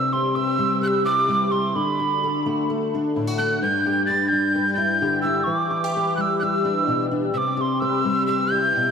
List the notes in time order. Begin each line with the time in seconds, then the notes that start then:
Already playing: C3 G3 E6
0.13 G4 C6
0.35 B4 E6
0.58 G3 G4
0.81 B4 F#6
0.88 E6
1.04 E4 D6
1.28 G3 G4
1.51 E4 C6
1.75 D3 B5
1.99 F#4
2.24 A4
2.46 A3 F#4
2.70 A4
2.95 D4
3.16 A2 E4
3.27 F#4
3.38 D4 F#6
3.62 G2 G6
3.86 G4
4.06 B4 A6
4.28 G6
4.32 G3 G4
4.56 B4
4.74 E4 G6
5.02 D3 G4
5.22 E4 E6
5.44 E3 C#6
5.55 D6
5.71 E4
5.84 G4
5.96 B4
6.16 G3 G4 F#6
6.21 E6
6.39 B4 E6 F#6
6.65 D4
6.87 B2 G4
7.11 D4
7.33 C3 E6
7.38 D6
7.57 G4 D6
7.61 C6
7.80 B4 E6
8.04 G3 G4
8.27 B4 E6
8.51 E4 G6
8.76 B2